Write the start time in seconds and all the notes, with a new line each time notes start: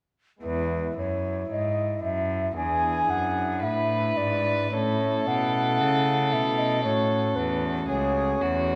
0.39 E2 G#3 B3 E4
0.43 E2 B4
0.97 F#2 C#5
1.51 G#2 D#5
2.03 F#2 E5
2.52 B3 D4 E4
2.56 E2 G#4 G#5
3.09 F#2 F#5
3.63 A2 B4 E5
4.17 G#2 D5
4.69 A2 A3 C#4 E4 C#5
4.73 A2 A4
5.27 B2 F#5
5.80 C#3
6.33 B2 E5
6.58 D#5
6.81 A3 C#4 F#4 C#5
6.85 A2
7.36 E2 B4
7.88 C#2 G#4 C#5
8.41 E2 F#4